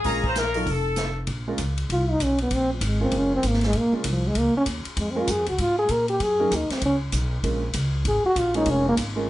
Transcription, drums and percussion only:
0.04 kick soft
0.04 open hi-hat soft
0.24 kick soft
0.35 snare medium
0.35 closed hi-hat medium
0.54 open hi-hat soft
0.66 kick soft
0.66 open hi-hat soft
0.96 snare medium
0.96 closed hi-hat medium
1.27 kick soft
1.27 ride medium
1.58 kick soft
1.58 hi-hat pedal medium
1.58 ride medium
1.78 ride soft
1.90 kick soft
1.90 ride medium
2.20 kick soft
2.20 hi-hat pedal medium
2.20 ride medium
2.38 ride soft
2.51 kick soft
2.51 ride medium
2.81 kick soft
2.81 hi-hat pedal medium
2.81 ride medium
3.11 kick soft
3.11 ride medium
3.43 kick soft
3.43 hi-hat pedal medium
3.43 ride medium
3.53 snare soft
3.61 snare soft
3.61 ride soft
3.73 kick soft
3.73 ride medium
4.04 kick soft
4.04 hi-hat pedal medium
4.04 ride medium
4.35 kick soft
4.35 ride medium
4.66 kick soft
4.66 hi-hat pedal medium
4.66 ride medium
4.85 ride soft
4.97 kick soft
4.97 ride medium
5.27 kick soft
5.27 hi-hat pedal medium
5.27 ride medium
5.46 ride soft
5.58 kick soft
5.58 ride medium
5.88 kick soft
5.88 hi-hat pedal medium
5.88 ride medium
6.08 ride soft
6.20 kick soft
6.20 ride medium
6.51 kick soft
6.51 hi-hat pedal medium
6.51 ride medium
6.70 snare soft
6.70 ride medium
6.81 kick soft
6.81 ride medium
7.12 kick soft
7.12 hi-hat pedal medium
7.12 ride medium
7.43 kick soft
7.43 ride medium
7.73 kick soft
7.73 hi-hat pedal medium
7.73 ride medium
8.05 kick soft
8.05 ride medium
8.36 kick soft
8.36 hi-hat pedal medium
8.36 ride medium
8.54 ride soft
8.66 kick soft
8.66 ride medium
8.97 kick soft
8.97 hi-hat pedal medium
8.97 ride medium

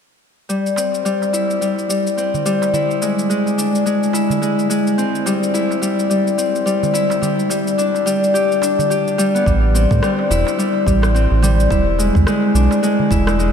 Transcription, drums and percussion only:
0.50 shaker soft
0.66 shaker soft
0.76 darbuka tek medium
0.76 shaker medium
0.94 shaker soft
1.06 shaker soft
1.22 darbuka ka medium
1.22 shaker soft
1.34 shaker medium
1.51 shaker soft
1.62 shaker soft
1.79 shaker soft
1.90 shaker medium
2.07 shaker soft
2.18 shaker soft
2.34 darbuka dum medium
2.34 shaker soft
2.45 darbuka ka soft
2.45 shaker medium
2.62 darbuka tek medium
2.62 shaker soft
2.73 darbuka dum medium
2.73 shaker soft
2.91 shaker soft
3.02 darbuka tek medium
3.02 shaker medium
3.19 shaker soft
3.31 shaker soft
3.46 darbuka ka soft
3.46 shaker soft
3.57 darbuka tek soft
3.57 shaker medium
3.75 shaker soft
3.87 darbuka ka soft
3.87 shaker soft
4.03 shaker soft
4.13 darbuka ka soft
4.13 darbuka tek medium
4.13 shaker medium
4.30 darbuka ka soft
4.30 darbuka dum medium
4.30 shaker soft
4.43 shaker soft
4.59 shaker soft
4.70 darbuka ka soft
4.70 shaker medium
4.87 shaker soft
4.99 shaker soft
5.15 shaker soft
5.26 darbuka tek medium
5.26 shaker medium
5.43 shaker soft
5.55 shaker soft
5.71 darbuka ka medium
5.71 shaker soft
5.83 shaker medium
5.99 shaker soft
6.11 shaker soft
6.27 shaker soft
6.39 shaker medium
6.55 shaker soft
6.67 shaker soft
6.83 darbuka dum medium
6.83 shaker soft
6.95 darbuka ka soft
6.95 shaker medium
7.10 darbuka tek medium
7.10 shaker soft
7.22 darbuka dum medium
7.22 shaker soft
7.39 shaker soft
7.50 darbuka tek medium
7.50 shaker medium
7.67 shaker soft
7.79 shaker soft
7.95 darbuka ka medium
7.95 shaker soft
8.07 darbuka tek soft
8.07 shaker medium
8.24 shaker soft
8.35 darbuka ka soft
8.35 shaker soft
8.52 shaker soft
8.62 darbuka ka soft
8.62 darbuka tek medium
8.62 shaker medium
8.79 darbuka ka soft
8.79 darbuka dum medium
8.79 shaker soft
8.91 shaker soft
9.08 shaker soft
9.18 darbuka ka soft
9.18 shaker medium
9.36 shaker soft
9.46 kick loud
9.46 shaker soft
9.74 darbuka ka soft
9.74 shaker medium
9.91 kick loud
9.91 darbuka dum medium
9.91 shaker soft
10.03 cross-stick medium
10.03 shaker soft
10.19 darbuka ka medium
10.31 shaker medium
10.47 darbuka tek medium
10.47 shaker soft
10.60 shaker soft
10.86 kick medium
10.86 darbuka ka soft
10.86 darbuka tek soft
10.86 shaker medium
11.02 cross-stick medium
11.02 darbuka tek medium
11.02 shaker soft
11.16 shaker soft
11.30 darbuka tek soft
11.43 darbuka tek soft
11.43 darbuka dum medium
11.43 shaker medium
11.60 shaker soft
11.71 kick loud
11.71 shaker soft
11.99 darbuka ka soft
11.99 shaker medium
12.15 kick loud
12.15 darbuka dum medium
12.15 shaker soft
12.27 cross-stick medium
12.27 shaker soft
12.42 darbuka ka medium
12.56 shaker medium
12.71 darbuka tek medium
12.71 shaker soft
12.84 shaker soft
13.00 darbuka dum medium
13.11 kick loud
13.11 darbuka tek soft
13.11 shaker medium
13.27 cross-stick medium
13.27 darbuka ka soft
13.27 darbuka tek medium
13.27 shaker soft
13.40 shaker soft

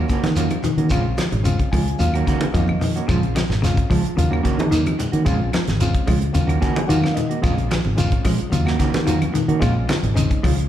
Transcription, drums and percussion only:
0.09 kick medium
0.09 closed hi-hat soft
0.09 shekere soft
0.24 snare soft
0.24 closed hi-hat soft
0.24 high conga medium
0.36 closed hi-hat medium
0.36 shekere medium
0.50 closed hi-hat soft
0.50 high conga medium
0.50 claves medium
0.63 closed hi-hat medium
0.63 high conga medium
0.63 low conga medium
0.63 shekere soft
0.78 closed hi-hat soft
0.90 kick medium
0.90 closed hi-hat medium
0.90 claves medium
0.90 shekere medium
1.18 snare medium
1.18 closed hi-hat soft
1.18 high conga medium
1.18 claves medium
1.18 shekere soft
1.32 closed hi-hat soft
1.32 high conga medium
1.32 low conga medium
1.45 closed hi-hat medium
1.45 shekere medium
1.59 kick medium
1.59 closed hi-hat soft
1.73 kick medium
1.73 open hi-hat medium
1.73 high conga medium
1.73 low conga medium
1.73 claves medium
1.73 shekere soft
1.88 closed hi-hat soft
1.99 closed hi-hat medium
1.99 shekere medium
2.14 closed hi-hat soft
2.14 claves medium
2.27 kick medium
2.27 closed hi-hat soft
2.27 shekere soft
2.41 closed hi-hat soft
2.41 high conga medium
2.54 kick medium
2.54 closed hi-hat medium
2.54 shekere medium
2.68 high conga medium
2.68 claves medium
2.81 open hi-hat medium
2.81 low conga medium
2.81 shekere soft
2.97 closed hi-hat soft
3.09 kick medium
3.09 closed hi-hat medium
3.09 claves medium
3.09 shekere medium
3.23 closed hi-hat soft
3.36 snare medium
3.36 closed hi-hat soft
3.36 high conga medium
3.36 claves medium
3.36 shekere soft
3.50 snare soft
3.50 low conga medium
3.64 snare soft
3.64 closed hi-hat medium
3.64 shekere medium
3.77 kick medium
3.77 closed hi-hat soft
3.91 kick medium
3.91 open hi-hat medium
3.91 high conga medium
3.91 low conga medium
3.91 claves medium
3.91 shekere soft
4.05 closed hi-hat soft
4.18 closed hi-hat medium
4.18 shekere medium
4.33 claves medium
4.45 kick medium
4.45 closed hi-hat soft
4.45 shekere soft
4.59 closed hi-hat soft
4.59 high conga loud
4.72 closed hi-hat medium
4.72 shekere medium
4.86 closed hi-hat soft
4.86 high conga medium
4.86 claves medium
4.99 closed hi-hat soft
4.99 low conga medium
4.99 shekere soft
5.13 closed hi-hat soft
5.26 kick medium
5.26 closed hi-hat medium
5.26 claves medium
5.26 shekere medium
5.53 snare medium
5.53 closed hi-hat medium
5.53 high conga medium
5.53 claves medium
5.53 shekere soft
5.67 snare soft
5.67 closed hi-hat soft
5.67 high conga medium
5.81 closed hi-hat medium
5.81 high conga medium
5.81 shekere medium
5.94 kick medium
5.94 closed hi-hat soft
6.07 kick medium
6.07 open hi-hat medium
6.07 high conga medium
6.07 low conga medium
6.07 claves medium
6.07 shekere soft
6.22 closed hi-hat soft
6.35 closed hi-hat medium
6.35 shekere medium
6.49 closed hi-hat soft
6.49 claves medium
6.62 kick medium
6.62 closed hi-hat medium
6.62 shekere soft
6.76 closed hi-hat soft
6.76 high conga loud
6.90 closed hi-hat medium
6.90 shekere medium
7.04 snare soft
7.04 high conga medium
7.04 claves medium
7.17 closed hi-hat soft
7.17 low conga medium
7.17 shekere soft
7.31 closed hi-hat soft
7.44 kick medium
7.44 closed hi-hat medium
7.44 claves medium
7.44 shekere medium
7.58 closed hi-hat soft
7.71 snare medium
7.71 closed hi-hat soft
7.71 high conga medium
7.71 claves medium
7.71 shekere soft
7.85 high conga medium
7.97 closed hi-hat medium
7.97 high conga medium
7.97 shekere medium
8.12 kick medium
8.12 closed hi-hat soft
8.25 kick medium
8.25 open hi-hat medium
8.25 high conga medium
8.25 low conga medium
8.25 claves medium
8.25 shekere soft
8.39 closed hi-hat soft
8.53 closed hi-hat medium
8.53 shekere medium
8.67 snare soft
8.67 claves medium
8.80 kick medium
8.80 closed hi-hat soft
8.80 shekere soft
8.94 snare soft
8.94 closed hi-hat soft
8.94 high conga medium
9.07 closed hi-hat medium
9.07 shekere medium
9.22 closed hi-hat soft
9.22 high conga medium
9.22 claves medium
9.35 closed hi-hat soft
9.35 low conga medium
9.35 shekere soft
9.49 closed hi-hat soft
9.62 kick medium
9.62 closed hi-hat medium
9.62 claves medium
9.62 shekere medium
9.89 snare medium
9.89 closed hi-hat medium
9.89 high conga medium
9.89 claves medium
9.89 shekere soft
10.04 closed hi-hat soft
10.04 low conga medium
10.17 closed hi-hat medium
10.17 high conga medium
10.17 shekere loud
10.31 kick medium
10.31 closed hi-hat soft
10.44 kick medium
10.44 open hi-hat medium
10.44 high conga medium
10.44 low conga medium
10.44 claves medium
10.44 shekere soft
10.59 closed hi-hat soft

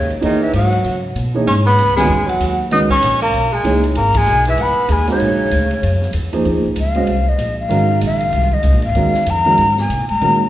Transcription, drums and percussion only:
0.10 ride soft
0.22 ride soft
0.53 hi-hat pedal medium
0.53 ride medium
0.72 ride soft
0.84 ride medium
1.16 hi-hat pedal soft
1.16 ride medium
1.47 ride medium
1.78 hi-hat pedal medium
1.78 ride medium
1.97 snare medium
1.97 ride medium
2.29 ride soft
2.40 hi-hat pedal medium
2.40 ride medium
2.71 ride medium
2.90 kick medium
3.02 hi-hat pedal medium
3.02 ride medium
3.21 ride soft
3.34 ride medium
3.65 hi-hat pedal soft
3.65 ride medium
3.84 ride soft
3.95 ride medium
4.14 kick medium
4.14 ride medium
4.26 hi-hat pedal medium
4.45 ride soft
4.57 ride medium
4.89 hi-hat pedal medium
4.89 ride medium
5.07 snare soft
5.07 ride soft
5.20 ride medium
5.51 hi-hat pedal medium
5.51 ride medium
5.71 ride soft
5.83 ride medium
6.02 snare soft
6.13 hi-hat pedal medium
6.13 ride medium
6.33 ride soft
6.45 ride soft
6.76 hi-hat pedal medium
6.76 ride medium
6.95 ride soft
7.07 ride medium
7.39 hi-hat pedal medium
7.39 ride medium
7.70 ride soft
8.01 hi-hat pedal soft
8.01 ride medium
8.20 ride soft
8.32 ride medium
8.51 kick soft
8.63 hi-hat pedal medium
8.63 ride medium
8.82 ride soft
8.95 ride medium
9.14 snare soft
9.26 hi-hat pedal soft
9.26 ride medium
9.58 ride medium
9.77 snare soft
9.90 hi-hat pedal medium
9.90 ride medium
10.09 ride soft
10.21 ride medium

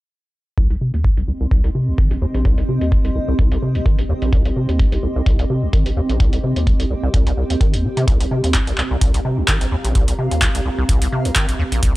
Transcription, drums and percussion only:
0.58 kick loud
0.58 closed hi-hat medium
0.70 closed hi-hat medium
0.94 closed hi-hat soft
1.04 kick loud
1.04 closed hi-hat medium
1.17 closed hi-hat soft
1.51 kick loud
1.51 closed hi-hat medium
1.64 closed hi-hat medium
1.98 kick loud
1.98 closed hi-hat medium
2.11 closed hi-hat medium
2.34 closed hi-hat soft
2.45 kick loud
2.45 closed hi-hat medium
2.58 closed hi-hat medium
2.81 closed hi-hat soft
2.92 kick loud
2.92 closed hi-hat medium
3.05 closed hi-hat soft
3.39 kick loud
3.39 closed hi-hat medium
3.52 closed hi-hat medium
3.75 closed hi-hat soft
3.86 kick loud
3.86 closed hi-hat medium
3.99 closed hi-hat medium
4.22 closed hi-hat soft
4.33 kick loud
4.33 closed hi-hat medium
4.45 closed hi-hat soft
4.69 closed hi-hat soft
4.79 kick loud
4.79 closed hi-hat medium
4.92 closed hi-hat soft
5.26 kick loud
5.26 closed hi-hat medium
5.39 closed hi-hat medium
5.73 kick loud
5.73 closed hi-hat medium
5.86 closed hi-hat medium
6.09 closed hi-hat soft
6.20 kick loud
6.20 closed hi-hat medium
6.33 closed hi-hat soft
6.56 closed hi-hat soft
6.67 kick loud
6.67 closed hi-hat medium
6.80 closed hi-hat soft
7.14 kick loud
7.14 closed hi-hat medium
7.27 closed hi-hat soft
7.50 closed hi-hat soft
7.61 kick loud
7.61 closed hi-hat medium
7.74 closed hi-hat medium
7.97 closed hi-hat soft
8.08 kick loud
8.08 closed hi-hat medium
8.21 closed hi-hat soft
8.44 closed hi-hat soft
8.54 kick loud
8.54 clap loud
8.54 closed hi-hat medium
8.67 closed hi-hat soft
8.78 clap medium
9.01 kick loud
9.01 closed hi-hat medium
9.14 closed hi-hat medium
9.48 kick loud
9.48 clap loud
9.48 closed hi-hat medium
9.61 closed hi-hat medium
9.85 closed hi-hat soft
9.95 kick loud
9.95 closed hi-hat medium
10.08 closed hi-hat medium
10.31 closed hi-hat soft
10.42 kick loud
10.42 clap loud
10.42 closed hi-hat medium
10.55 closed hi-hat soft
10.89 kick loud
10.89 closed hi-hat medium
11.02 closed hi-hat medium
11.25 closed hi-hat soft
11.36 kick loud
11.36 clap loud
11.36 closed hi-hat medium
11.49 closed hi-hat medium
11.72 closed hi-hat soft
11.83 kick loud
11.83 closed hi-hat medium

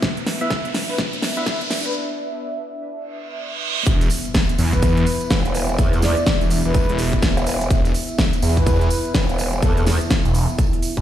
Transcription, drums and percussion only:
0.02 kick loud
0.02 snare medium
0.02 closed hi-hat medium
0.17 closed hi-hat soft
0.26 snare medium
0.26 open hi-hat loud
0.41 closed hi-hat soft
0.50 kick loud
0.50 snare medium
0.50 closed hi-hat medium
0.65 closed hi-hat medium
0.74 snare medium
0.74 open hi-hat loud
0.98 kick loud
0.98 snare medium
0.98 closed hi-hat medium
1.13 closed hi-hat medium
1.22 snare medium
1.22 open hi-hat loud
1.37 closed hi-hat soft
1.46 kick loud
1.46 snare medium
1.46 closed hi-hat medium
1.61 closed hi-hat medium
1.70 snare medium
1.70 open hi-hat loud
1.85 closed hi-hat soft
3.87 kick loud
3.87 closed hi-hat medium
3.87 tambourine soft
3.87 shaker medium
4.01 closed hi-hat medium
4.01 closed hi-hat soft
4.01 tambourine soft
4.10 open hi-hat loud
4.10 tambourine medium
4.10 shaker medium
4.25 closed hi-hat soft
4.25 tambourine soft
4.35 kick loud
4.35 snare loud
4.35 closed hi-hat medium
4.35 tambourine medium
4.35 shaker medium
4.49 closed hi-hat medium
4.49 closed hi-hat soft
4.49 tambourine soft
4.58 open hi-hat loud
4.58 tambourine medium
4.58 shaker medium
4.73 kick medium
4.73 closed hi-hat soft
4.73 tambourine soft
4.83 kick loud
4.83 closed hi-hat medium
4.83 tambourine medium
4.83 shaker medium
4.97 closed hi-hat medium
5.07 open hi-hat loud
5.07 tambourine medium
5.07 shaker medium
5.21 closed hi-hat soft
5.21 tambourine soft
5.31 kick loud
5.31 snare loud
5.31 closed hi-hat medium
5.31 tambourine medium
5.31 shaker medium
5.45 snare soft
5.45 closed hi-hat medium
5.45 tambourine soft
5.55 open hi-hat loud
5.55 tambourine medium
5.55 shaker medium
5.69 closed hi-hat soft
5.69 tambourine soft
5.78 kick loud
5.78 closed hi-hat medium
5.78 tambourine medium
5.78 shaker medium
5.93 closed hi-hat medium
5.93 tambourine soft
6.02 snare medium
6.02 open hi-hat loud
6.02 tambourine loud
6.02 shaker medium
6.17 closed hi-hat soft
6.17 tambourine soft
6.26 kick loud
6.26 snare loud
6.26 closed hi-hat medium
6.26 tambourine medium
6.26 shaker medium
6.41 closed hi-hat medium
6.41 tambourine soft
6.51 snare medium
6.51 open hi-hat loud
6.51 tambourine medium
6.51 shaker medium
6.65 closed hi-hat soft
6.65 tambourine soft
6.74 kick loud
6.74 closed hi-hat medium
6.74 tambourine medium
6.74 shaker medium
6.89 closed hi-hat medium
6.99 open hi-hat loud
6.99 tambourine medium
6.99 shaker medium
7.13 kick medium
7.13 tambourine soft
7.22 kick loud
7.22 snare loud
7.22 closed hi-hat medium
7.22 tambourine medium
7.22 shaker medium
7.37 snare soft
7.37 closed hi-hat medium
7.37 tambourine soft
7.47 snare soft
7.47 open hi-hat loud
7.47 tambourine medium
7.47 shaker medium
7.61 closed hi-hat soft
7.61 tambourine soft
7.71 kick loud
7.71 closed hi-hat medium
7.71 tambourine medium
7.71 shaker medium
7.85 closed hi-hat medium
7.85 closed hi-hat soft
7.85 tambourine soft
7.94 open hi-hat loud
7.94 tambourine loud
7.94 shaker medium
8.08 closed hi-hat soft
8.08 tambourine soft
8.18 kick loud
8.18 snare loud
8.18 closed hi-hat medium
8.18 tambourine medium
8.18 shaker medium
8.33 closed hi-hat medium
8.33 closed hi-hat soft
8.33 tambourine soft
8.42 open hi-hat loud
8.42 tambourine loud
8.42 shaker medium
8.57 kick medium
8.57 closed hi-hat soft
8.57 tambourine soft
8.67 kick loud
8.67 closed hi-hat medium
8.67 tambourine medium
8.67 shaker medium
8.81 closed hi-hat medium
8.91 open hi-hat loud
8.91 tambourine loud
8.91 shaker medium
9.05 closed hi-hat soft
9.05 tambourine soft
9.14 kick loud
9.14 snare loud
9.14 closed hi-hat medium
9.14 tambourine medium
9.14 shaker medium
9.29 snare soft
9.29 closed hi-hat medium
9.29 tambourine soft
9.39 open hi-hat loud
9.39 tambourine loud
9.39 shaker medium
9.53 closed hi-hat soft
9.53 tambourine soft
9.63 kick loud
9.63 closed hi-hat medium
9.63 tambourine medium
9.63 shaker medium
9.77 closed hi-hat soft
9.77 tambourine soft
9.87 snare medium
9.87 open hi-hat loud
9.87 tambourine medium
9.87 shaker medium
10.01 closed hi-hat soft
10.01 tambourine soft
10.11 kick loud
10.11 snare loud
10.11 closed hi-hat medium
10.11 tambourine medium
10.11 shaker medium
10.25 closed hi-hat soft
10.25 tambourine soft
10.35 snare medium
10.35 open hi-hat loud
10.35 tambourine medium
10.35 shaker medium
10.49 closed hi-hat soft
10.49 tambourine soft
10.59 kick loud
10.59 closed hi-hat medium
10.59 tambourine medium
10.59 shaker medium
10.73 closed hi-hat soft
10.82 open hi-hat loud
10.82 tambourine medium
10.82 shaker medium
10.97 kick medium
10.97 closed hi-hat soft

